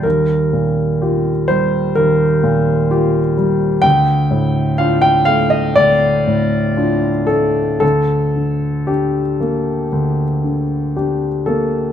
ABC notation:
X:1
M:4/4
L:1/16
Q:1/4=61
K:Gm
V:1 name="Grand piano"
B6 c2 B4 z4 | g4 f g f e d6 A2 | A4 G8- G2 A2 |]
V:2 name="Grand piano" clef=bass
[E,,G,]2 B,,2 [FG]2 G,2 E,,2 B,,2 [FG]2 G,2 | D,,2 A,,2 [DF]2 A,2 D,,2 A,,2 [DF]2 A,2 | D,,2 D,2 D2 B,2 D,,2 D,2 [DG]2 B,2 |]